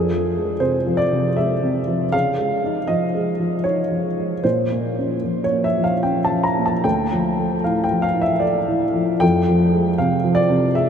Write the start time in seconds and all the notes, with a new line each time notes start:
Already playing: F2 G#4
0.11 F3
0.36 G#3
0.60 C3 C5
0.86 F3
0.97 D5
1.13 C3
1.36 G#3 E5
1.63 C3
1.87 F3
2.12 C#3 F5
2.38 G#3
2.64 D#4
2.87 F3 D#5
3.14 G#3
3.40 F3
3.64 D#4 C#5
3.91 F3
4.18 G#3
4.44 A#2 C5
4.72 A#3
4.98 C#4
5.24 F3
5.44 C#5
5.51 A#3
5.64 E5
5.77 F3
5.84 F5
6.03 C#4 G5
6.24 A5
6.30 F3
6.44 A#5
6.59 A#3
6.66 A5
6.84 D2 G5
7.13 F3
7.39 A3
7.64 A2 F5
7.84 G5
7.91 F3
8.02 F5
8.15 A2
8.21 E5
8.40 A3 D5
8.68 A2
8.94 F3
9.20 F2 G5
9.48 F3
9.73 G#3
9.98 C3 F5
10.24 F3
10.35 D5
10.50 C3
10.75 G#3 E5